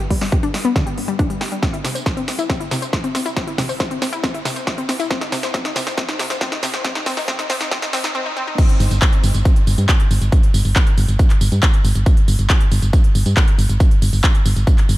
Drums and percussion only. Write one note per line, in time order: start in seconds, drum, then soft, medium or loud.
0.10 kick medium
0.10 open hi-hat loud
0.21 snare medium
0.21 open hi-hat medium
0.32 kick loud
0.32 closed hi-hat medium
0.43 closed hi-hat medium
0.54 snare medium
0.54 open hi-hat loud
0.65 closed hi-hat medium
0.76 kick loud
0.76 snare medium
0.76 closed hi-hat medium
0.87 closed hi-hat medium
0.98 open hi-hat loud
1.08 closed hi-hat medium
1.19 kick loud
1.19 closed hi-hat medium
1.30 closed hi-hat medium
1.41 snare medium
1.41 open hi-hat loud
1.52 closed hi-hat medium
1.63 kick loud
1.63 snare medium
1.63 closed hi-hat medium
1.63 tambourine soft
1.74 closed hi-hat medium
1.85 snare medium
1.85 open hi-hat loud
1.85 tambourine medium
1.95 closed hi-hat medium
1.95 tambourine soft
2.06 kick loud
2.06 snare medium
2.06 closed hi-hat medium
2.06 tambourine soft
2.17 closed hi-hat medium
2.28 snare medium
2.28 open hi-hat loud
2.28 tambourine medium
2.39 closed hi-hat medium
2.39 tambourine soft
2.50 kick loud
2.50 snare medium
2.50 closed hi-hat medium
2.50 tambourine soft
2.61 closed hi-hat medium
2.71 snare medium
2.71 open hi-hat loud
2.71 tambourine medium
2.82 closed hi-hat medium
2.82 tambourine soft
2.93 kick loud
2.93 snare medium
2.93 closed hi-hat medium
2.93 tambourine soft
3.04 closed hi-hat medium
3.15 snare medium
3.15 open hi-hat loud
3.15 tambourine medium
3.26 closed hi-hat medium
3.26 tambourine soft
3.37 kick loud
3.37 snare medium
3.37 closed hi-hat medium
3.37 tambourine soft
3.48 closed hi-hat medium
3.58 kick medium
3.58 snare medium
3.58 open hi-hat loud
3.58 tambourine medium
3.69 open hi-hat medium
3.69 tambourine soft
3.80 kick loud
3.80 snare medium
3.80 closed hi-hat medium
3.80 tambourine soft
3.91 closed hi-hat medium
4.02 snare medium
4.02 open hi-hat loud
4.02 tambourine medium
4.13 closed hi-hat medium
4.13 tambourine soft
4.23 kick loud
4.23 snare medium
4.23 closed hi-hat medium
4.23 tambourine soft
4.34 closed hi-hat medium
4.45 snare medium
4.45 open hi-hat loud
4.45 tambourine medium
4.56 closed hi-hat medium
4.56 tambourine soft
4.67 kick loud
4.67 snare medium
4.67 closed hi-hat medium
4.67 tambourine soft
4.78 closed hi-hat medium
4.89 snare medium
4.89 open hi-hat loud
4.89 tambourine medium
5.00 closed hi-hat medium
5.00 tambourine soft
5.11 kick loud
5.11 snare medium
5.11 closed hi-hat medium
5.11 tambourine soft
5.21 snare medium
5.21 closed hi-hat medium
5.32 snare medium
5.32 open hi-hat loud
5.32 tambourine medium
5.43 snare medium
5.43 closed hi-hat medium
5.43 tambourine soft
5.54 kick loud
5.54 snare medium
5.54 closed hi-hat medium
5.54 tambourine soft
5.65 snare medium
5.65 closed hi-hat medium
5.76 snare loud
5.76 open hi-hat loud
5.76 tambourine medium
5.87 snare medium
5.87 closed hi-hat medium
5.87 tambourine soft
5.98 kick loud
5.98 snare loud
5.98 closed hi-hat medium
5.98 tambourine soft
6.09 snare medium
6.09 closed hi-hat medium
6.19 snare medium
6.19 open hi-hat loud
6.19 tambourine medium
6.30 snare medium
6.30 closed hi-hat medium
6.30 tambourine soft
6.41 kick loud
6.41 snare loud
6.41 closed hi-hat medium
6.41 tambourine soft
6.52 snare medium
6.52 closed hi-hat medium
6.63 snare loud
6.63 open hi-hat loud
6.63 tambourine medium
6.74 snare medium
6.74 closed hi-hat medium
6.74 tambourine soft
6.84 kick loud
6.84 snare loud
6.84 closed hi-hat medium
6.84 tambourine soft
6.95 snare medium
6.95 closed hi-hat medium
7.06 kick medium
7.06 snare loud
7.06 open hi-hat loud
7.06 tambourine medium
7.17 snare medium
7.17 open hi-hat medium
7.17 tambourine soft
7.28 kick loud
7.28 snare loud
7.28 closed hi-hat medium
7.28 tambourine soft
7.39 snare medium
7.39 closed hi-hat medium
7.50 snare loud
7.50 open hi-hat loud
7.50 tambourine medium
7.61 snare medium
7.61 closed hi-hat medium
7.61 tambourine soft
7.71 kick loud
7.71 snare loud
7.71 closed hi-hat medium
7.71 tambourine soft
7.82 snare loud
7.82 closed hi-hat medium
7.93 snare loud
7.93 open hi-hat loud
7.93 tambourine medium
8.04 snare loud
8.04 closed hi-hat medium
8.04 tambourine soft
8.58 kick loud
8.58 closed hi-hat medium
8.58 crash loud
8.58 tambourine soft
8.69 closed hi-hat medium
8.80 open hi-hat loud
8.80 tambourine medium
8.91 closed hi-hat medium
8.91 tambourine soft
9.02 kick loud
9.02 clap loud
9.02 closed hi-hat medium
9.02 tambourine soft
9.13 closed hi-hat medium
9.24 open hi-hat loud
9.24 tambourine medium
9.34 closed hi-hat medium
9.34 tambourine soft
9.45 kick loud
9.45 closed hi-hat medium
9.45 tambourine soft
9.56 closed hi-hat medium
9.67 open hi-hat loud
9.67 tambourine medium
9.78 closed hi-hat medium
9.78 tambourine soft
9.89 kick loud
9.89 clap loud
9.89 closed hi-hat medium
9.89 tambourine soft
10.00 closed hi-hat medium
10.11 open hi-hat loud
10.11 tambourine medium
10.22 closed hi-hat medium
10.22 tambourine soft
10.32 kick loud
10.32 closed hi-hat medium
10.32 tambourine soft
10.43 closed hi-hat medium
10.54 open hi-hat loud
10.54 tambourine medium
10.65 open hi-hat medium
10.65 tambourine soft
10.76 kick loud
10.76 clap loud
10.76 closed hi-hat medium
10.76 tambourine soft
10.87 closed hi-hat medium
10.98 open hi-hat loud
10.98 tambourine medium
11.08 closed hi-hat medium
11.08 tambourine soft
11.19 kick loud
11.19 closed hi-hat medium
11.19 tambourine soft
11.30 clap soft
11.30 closed hi-hat medium
11.41 open hi-hat loud
11.41 tambourine medium
11.52 closed hi-hat medium
11.52 tambourine soft
11.63 kick loud
11.63 clap loud
11.63 closed hi-hat medium
11.63 tambourine soft
11.74 closed hi-hat medium
11.85 open hi-hat loud
11.85 tambourine medium
11.95 closed hi-hat medium
11.95 tambourine soft
12.06 kick loud
12.06 closed hi-hat medium
12.06 tambourine soft
12.17 closed hi-hat medium
12.28 open hi-hat loud
12.28 tambourine medium
12.39 closed hi-hat medium
12.39 tambourine soft
12.50 kick loud
12.50 clap loud
12.50 closed hi-hat medium
12.50 tambourine soft
12.61 closed hi-hat medium
12.72 open hi-hat loud
12.72 tambourine medium
12.82 closed hi-hat medium
12.82 tambourine soft
12.93 kick loud
12.93 closed hi-hat medium
12.93 tambourine soft
13.04 closed hi-hat medium
13.15 open hi-hat loud
13.15 tambourine medium
13.26 closed hi-hat medium
13.26 tambourine soft
13.37 kick loud
13.37 clap loud
13.37 closed hi-hat medium
13.37 tambourine soft
13.48 closed hi-hat medium
13.59 open hi-hat loud
13.59 tambourine medium
13.69 closed hi-hat medium
13.69 tambourine soft
13.80 kick loud
13.80 closed hi-hat medium
13.80 tambourine soft
13.91 closed hi-hat medium
14.02 open hi-hat loud
14.02 tambourine medium
14.13 open hi-hat medium
14.13 tambourine soft
14.24 kick loud
14.24 clap loud
14.24 closed hi-hat medium
14.24 tambourine soft
14.35 closed hi-hat medium
14.46 open hi-hat loud
14.46 tambourine medium
14.56 closed hi-hat medium
14.56 tambourine soft
14.67 kick loud
14.67 closed hi-hat medium
14.67 tambourine soft
14.78 clap soft
14.78 closed hi-hat medium
14.89 open hi-hat loud
14.89 tambourine medium